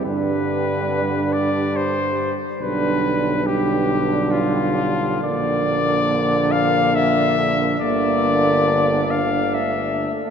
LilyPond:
<<
  \new Staff \with { instrumentName = "Cornet" } { \time 3/4 \key g \mixolydian \tempo 4 = 70 b'4. d''8 c''8 r8 | b'4 g'4 f'4 | \key bes \lydian d''4. f''8 e''4 | d''4. f''8 e''8 r8 | }
  \new Staff \with { instrumentName = "French horn section" } { \time 3/4 \key g \mixolydian d'2. | d'4 d'2 | \key bes \lydian d'2. | d'2. | }
  \new Staff \with { instrumentName = "Euphonium" } { \clef bass \time 3/4 \key g \mixolydian g2~ g8 r8 | g4 g2 | \key bes \lydian bes2. | bes4. r8 a4 | }
  \new Staff \with { instrumentName = "Trombone" } { \clef bass \time 3/4 \key g \mixolydian d2~ d8 r8 | d4 d2 | \key bes \lydian d2. | d2~ d8 r8 | }
  \new Staff \with { instrumentName = "Tuba" } { \clef bass \time 3/4 \key g \mixolydian g,2~ g,8 r8 | b,,2. | \key bes \lydian bes,,2. | g,,2~ g,,8 r8 | }
>>